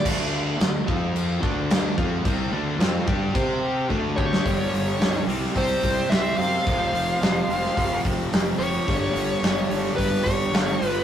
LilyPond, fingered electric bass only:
\new Staff \with { instrumentName = "Fingered electric bass" } { \clef bass \time 4/4 \key d \major \tempo 4 = 109 d,4 d,8 f,4 d,4 f,8 | c,8 d,8 f,8 g,8 c4 d,4 | g,,8 g,,8 cis,8 c,8 c,8 c,8 c,8 fis,8 | f,,8 f,,8 f,,8 f,,8 f,,8 f,,8 f,,8 f,,8 |
g,,8 g,,8 g,,8 g,,8 g,,8 g,,8 g,,8 g,,8 | }